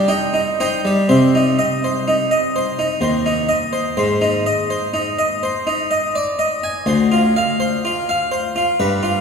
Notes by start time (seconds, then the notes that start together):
Already playing: G3
0.08 D#4 G5
0.34 D#4
0.60 D#4 C5 G5
0.85 G3
1.09 C3 C5
1.35 D#4
1.59 D#5
1.84 C5
2.08 D#4
2.31 D#5
2.56 C5
2.79 D#4
3.01 D#2 C5
3.26 D#4
3.49 D#5
3.73 C5
3.97 G#2 C5
4.21 D#4
4.46 D#5
4.70 C5
4.94 D#4
5.19 D#5
5.43 C5
5.67 D#4
5.91 D#5
6.15 D5
6.39 D#5
6.63 G#5
6.86 D2 C5
7.12 F4
7.36 F5
7.60 C5
7.85 F4
8.09 F5
8.32 C5
8.56 F4
8.80 G2 B4
9.03 F4